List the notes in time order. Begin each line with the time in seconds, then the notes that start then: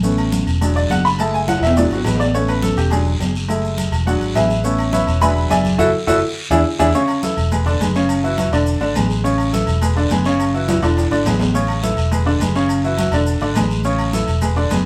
Already playing: A1
0.03 A3 B3 C#4, high conga, long guiro, maracas
0.18 high conga, low agogo, maracas
0.32 high conga, short guiro, maracas
0.46 E1, high conga, low agogo, short guiro, maracas
0.61 F#3 G#3 D4, high conga, low conga, low agogo, long guiro, maracas
0.76 D5, high conga, maracas
0.90 F#1 F#5, high conga, low timbale, low agogo, short guiro, maracas
1.05 B5, short guiro, maracas
1.19 G#3 A3 E4 A5, high conga, low agogo, long guiro, maracas
1.34 G#5, high conga, maracas
1.48 F#5, high conga, high timbale, low agogo, short guiro, maracas
1.57 high timbale
1.61 E1 E5, high conga, low agogo, short guiro, maracas
1.67 low timbale
1.76 F#3 G#3 D4 D5, high conga, high timbale, long guiro, maracas
1.90 G#1 F#4, high conga, low agogo, maracas
1.95 low timbale
2.05 A1 B4, high conga, low timbale, low agogo, short guiro, maracas
2.15 low timbale
2.20 D5, short guiro, maracas
2.25 low timbale
2.34 A3 B3 C#4 C#5, high conga, maracas
2.48 B4, high conga, low agogo, maracas
2.62 A4, high conga, short guiro, maracas
2.76 E1 G4, high conga, low agogo, short guiro, maracas
2.90 F#3 G#3 D4 G#4, high conga, low conga, low agogo, long guiro, maracas
3.06 high conga, maracas
3.20 F#1, high conga, low timbale, low agogo, short guiro, maracas
3.35 short guiro, maracas
3.48 G#3 A3 E4, high conga, low agogo, long guiro, maracas
3.64 high conga, maracas
3.78 high conga, low agogo, short guiro, maracas
3.91 E1, high conga, low agogo, short guiro, maracas
4.06 F#3 G#3 D4 F#4 F#5, high conga, long guiro, maracas
4.20 G#1, high conga, low agogo, maracas
4.35 A1 E4 G#4 B4 E5, high conga, low timbale, low agogo, short guiro, maracas
4.50 short guiro, maracas
4.64 A3 B3 C#4 E4 A4 C#5, long guiro, maracas
4.78 high conga, low agogo, maracas
4.93 E4 B4 C#5 E5, high conga, short guiro, maracas
5.07 E1, low agogo, short guiro, maracas
5.21 F#3 G#3 D4 B4 E5 G#5 B5, high conga, low conga, low agogo, long guiro, maracas
5.36 high conga
5.50 F#1 G#4 D5 E5 G#5, high conga, low timbale, low agogo, short guiro, maracas
5.65 high conga, short guiro, maracas
5.78 F#1 E4 F#4 A4, low conga, high timbale, long guiro, maracas
6.07 F#1 E4 F#4 A4, low conga, high timbale, long guiro, maracas
6.50 E2 D4 E4 G#4, low conga, high timbale, maracas
6.79 E2 D4 E4 G#4, low conga, high timbale, long guiro, maracas
6.94 C#3 C#4 C#5, high conga, long guiro, maracas
7.08 high conga, low agogo, maracas
7.23 E3 E4 A4, high conga, short guiro, maracas
7.37 E1, high conga, low agogo, short guiro, maracas
7.52 G#3 G#4 B4, high conga, low conga, low agogo, long guiro, maracas
7.66 D3 D4 D5, high conga, low conga, maracas
7.80 F#1 G#3 G#4 B4, high conga, low agogo, short guiro, maracas
7.95 C#3 C#4 C#5, short guiro, maracas
8.09 low agogo, long guiro, maracas
8.24 E3 E4 F#4, high conga, maracas
8.38 E3 E4 F#4, high conga, low agogo, short guiro, maracas
8.52 E1 D3 D4 D5, high conga, low agogo, short guiro, maracas
8.66 high conga, long guiro, maracas
8.80 G#1 D3 D4 D5, high conga, low agogo, maracas
8.95 A1 G#3 G#4 B4, high conga, low timbale, low agogo, short guiro, maracas
9.10 short guiro, maracas
9.24 C#3 C#4 C#5, high conga, long guiro, maracas
9.38 high conga, low agogo, maracas
9.53 E3 E4 A4, high conga, short guiro, maracas
9.67 E1, high conga, low agogo, short guiro, maracas
9.81 G#3 G#4 B4, high conga, low conga, low agogo, long guiro, maracas
9.96 D3 D4 D5, high conga, maracas
10.10 F#1 G#3 G#4 B4, high conga, low timbale, low agogo, short guiro, maracas
10.25 C#3 C#4 C#5, short guiro, maracas
10.39 low agogo, long guiro, maracas
10.54 E3 E4 F#4, maracas
10.68 E3 E4 F#4, high conga, high timbale, low agogo, short guiro, maracas
10.82 E1 D3 D4 D5, high timbale, low agogo, short guiro, maracas
10.97 high conga, high timbale, long guiro, maracas
11.11 G#1 D3 D4 D5, high conga, low agogo, maracas
11.25 A1 G#3 G#4 B4, high conga, low timbale, low agogo, short guiro, maracas
11.39 high conga, low timbale, short guiro, maracas
11.54 C#3 C#4 C#5, high conga, long guiro, maracas
11.68 high conga, low agogo, maracas
11.83 E3 E4 A4, high conga, short guiro, maracas
11.97 E1, high conga, low agogo, short guiro, maracas
12.11 G#3 G#4 B4, high conga, low conga, low agogo, long guiro, maracas
12.26 D3 D4 D5, high conga, maracas
12.40 F#1 G#3 G#4 B4, high conga, low agogo, short guiro, maracas
12.55 C#3 C#4 C#5, short guiro, maracas
12.69 high conga, low agogo, long guiro, maracas
12.84 E3 E4 F#4, high conga, maracas
12.98 E3 E4 F#4, high conga, low agogo, short guiro, maracas
13.12 E1 D3 D4 D5, high conga, low agogo, short guiro, maracas
13.26 high conga, long guiro, maracas
13.40 G#1 D3 D4 D5, high conga, low agogo, maracas
13.55 A1 G#3 G#4 B4, high conga, low timbale, low agogo, short guiro, maracas
13.70 short guiro, maracas
13.84 C#3 C#4 C#5, high conga, long guiro, maracas
13.99 high conga, low agogo, maracas
14.13 E3 E4 A4, high conga, short guiro, maracas
14.27 E1, high conga, low agogo, short guiro, maracas
14.41 G#3 G#4 B4, high conga, low conga, low agogo, long guiro, maracas
14.56 D3 D4 D5, high conga, maracas
14.70 F#1 G#3 G#4 B4, high conga, low timbale, low agogo, short guiro, maracas